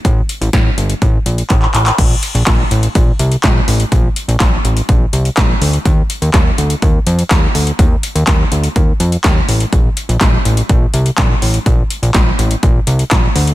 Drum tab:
CC |----------------|x---------------|----------------|----------------|
HH |x-xxx-xxx-xxx-xx|x-xxx-xxx-xxx-ox|x-xxx-xxx-xxx-ox|x-xxx-xxx-xxx-ox|
CP |------------xxxx|----x-------x---|----x-------x---|----x-------x---|
SD |----o-----------|----o-------o---|----o-------o---|----o-------o---|
BD |o---o---o---o---|o---o---o---o---|o---o---o---o---|o---o---o---o---|

CC |----------------|----------------|----------------|
HH |x-xxx-xxx-xxx-ox|x-xxx-xxx-xxx-ox|x-xxx-xxx-xxx-ox|
CP |----x-------x---|----x-------x---|----x-------x---|
SD |----o-------o---|----o-------o---|----o-------o---|
BD |o---o---o---o---|o---o---o---o---|o---o---o---o---|